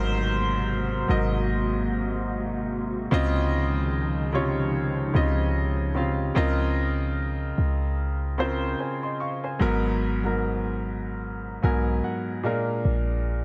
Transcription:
Already playing: G#1 G#2 C3 F#3 G#3 A#3 F#4 A#4 C5
1.08 G#1 G#2 F#3 A#4 D#5
3.11 C#2 C#3 D#3 F3 G#3 C4 D#4 F4 D#5
4.33 C3 C#3 F4 C#5
5.14 C#2 C#3 C4 F4 D#5
5.95 C#3 C4 F4 F5
6.35 C#2 C#3 C4 F4 A#4 D#5
7.58 C#2
8.38 C#3 C4 F4 A#4 C5
8.80 C5 G#5
9.03 D#5 C6
9.20 F5 C#6
9.44 C5 G#5
9.59 G#1 G#2 F#3 B3 A#4
10.24 G#2 F#3 B3 A#4
11.62 B1 G#2 F#3 B3 A#4 G#5
12.04 F#5
12.43 A#2 G#3 D4 A#4 F5
12.85 A#1

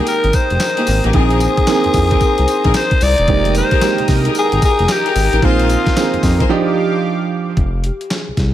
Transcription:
Already playing: D#3 G#3 A#3 G4 A#4 G5 A#5 D#6
0.07 A#4, closed hi-hat, tambourine
0.24 G#1, closed hi-hat
0.33 C5, kick, closed hi-hat, tambourine
0.50 F1, closed hi-hat
0.60 snare, clap, closed hi-hat, tambourine
0.77 A#3 D#4 G4 G#4, closed hi-hat
0.87 G#1, open hi-hat, tambourine
1.03 A1 A#3 D#4 G4 G#4, closed hi-hat
1.13 A#1 D#3 A#3 C4 D#4 G#4 A#4 C5, kick, closed hi-hat
1.30 closed hi-hat
1.40 closed hi-hat, tambourine
1.57 kick, closed hi-hat
1.67 D#3 A#3 C4 G#4, snare, clap, closed hi-hat, tambourine
1.84 F2, closed hi-hat
1.94 F2, kick, open hi-hat, tambourine
2.11 C4 D#4 G#4 A#4, kick, closed hi-hat
2.21 kick, closed hi-hat, tambourine
2.38 C2, closed hi-hat
2.48 closed hi-hat, tambourine
2.64 A#1 C4 D#4 G#4 A#4, kick, closed hi-hat
2.74 C5, snare, clap, closed hi-hat, tambourine
2.91 kick, closed hi-hat
3.01 C2 D5, open hi-hat, tambourine
3.18 E1, closed hi-hat
3.28 F1 D#3 G#3 A#3 G4 A#4 G5 A#5 D#6, kick, closed hi-hat
3.45 closed hi-hat
3.55 C5, closed hi-hat, tambourine
3.71 D#4 G4 G#4 A#4, kick, closed hi-hat
3.81 D#3 G#3 A#3 G4, snare, clap, closed hi-hat, tambourine
3.98 C2, closed hi-hat
4.08 C2, kick, snare, open hi-hat, tambourine
4.25 D#4 G4 G#4 A#4, closed hi-hat
4.35 G#4, closed hi-hat, tambourine
4.52 G#1, closed hi-hat
4.62 G#4, kick, closed hi-hat, tambourine
4.79 F1, closed hi-hat
4.88 G4, snare, clap, closed hi-hat, tambourine
5.05 D#4 G4 G#4 A#4, closed hi-hat
5.16 G#1, open hi-hat, tambourine
5.32 A1 D#4 G4 G#4 A#4, closed hi-hat
5.42 A#1 D#3 A#3 C4 D#4 F4 G#4 A#4 C5 D#6, kick, closed hi-hat
5.59 closed hi-hat
5.70 closed hi-hat, tambourine
5.86 kick, snare, closed hi-hat
5.96 D#3 A#3 C4 G#4, snare, clap, closed hi-hat, tambourine
6.13 F2, closed hi-hat
6.23 F2, kick, snare, open hi-hat, tambourine
6.40 D#4 G#4 A#4 C5, kick, closed hi-hat
6.49 F3 D4 D#4 G4 F5 D6
7.57 F1, kick, closed hi-hat
7.84 G4, closed hi-hat
8.01 closed hi-hat
8.10 G#4, snare, clap, closed hi-hat
8.28 C2
8.37 C2, kick, snare, closed hi-hat

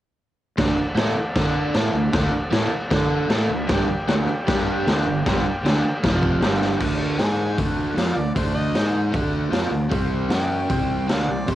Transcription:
0.57 D2 D3 A3 D4 A4 D5 F#5, kick, snare, crash
0.77 muted fingered electric bass stroke, muted overdriven electric guitar stroke
0.95 A2 A3 E4 A4, snare, crash
1.16 muted overdriven electric guitar stroke, muted fingered electric bass stroke
1.35 D3 D4 A4 D5, kick, snare, crash
1.74 A2 A3 E4 A4, snare, crash
1.93 D2 D3 A3
2.13 D2 D3 A3 D4, kick, snare, crash
2.33 muted overdriven electric guitar stroke, muted fingered electric bass stroke
2.51 A2 A3 E4 A4, snare, crash
2.71 D5, muted fingered electric bass stroke, muted overdriven electric guitar stroke
2.90 D3 D4 A4 D5 F#5, kick, snare, crash
3.13 F#5
3.28 A2 A3 E4 A4, snare, crash
3.32 A5
3.49 D2 D3 A3 B5
3.68 G1 G2 D3 G3 G4 D5 G5, kick, snare, crash
3.89 muted overdriven electric guitar stroke, muted fingered electric bass stroke
4.07 D2 D3 A3 D4, snare, crash
4.26 muted fingered electric bass stroke, muted overdriven electric guitar stroke
4.47 G2 G3 D4 G4, kick, snare, crash
4.86 D2 D3 A3 D4, snare, crash
5.06 G1 G2 D3
5.26 G1 G2 D3 G3, kick, snare, crash
5.45 muted fingered electric bass stroke, muted overdriven electric guitar stroke
5.63 D2 D3 A3 D4, snare, crash
5.84 muted fingered electric bass stroke, muted overdriven electric guitar stroke
6.03 F1 F2 C3 F3 F4 C5 F5, kick, snare, crash
6.23 kick
6.40 G1 G2 D3 G3 G4 D5 G5, snare, crash
6.61 snare
6.80 D2 D3 A3 D4 F#4 A4 D5, kick, crash
7.18 G#2 G#3 D#4 G#4 D#5 G#5, snare, open hi-hat
7.57 D2 D3 A3 D4 F#4 A4 D5, kick, open hi-hat
7.97 F2 F3 C4 F4 F5, snare, open hi-hat
8.17 D2 D3 A3 D5
8.35 D2 D3 A3 D4 C5, kick, open hi-hat
8.55 D#5
8.74 G#2 G#3 D#4 G#4 D#5, snare, open hi-hat
9.12 D2 D3 A3 D4 F#4 A4 D5, kick, open hi-hat
9.51 F2 F3 C4 F4, snare, open hi-hat
9.71 D2 D3 A3
9.90 C2 C3 G3 C4 G4 C5, kick, open hi-hat
10.28 F#2 F#3 C#4 F#4 C#5 G5, snare, open hi-hat
10.69 C2 C3 G3 C4 G4 C5, kick, open hi-hat
11.08 D2 D3 A3 D4 F5, snare, open hi-hat
11.28 C2 C3 G3
11.32 D5
11.47 C2 C3 G3 C4 C5, kick, open hi-hat

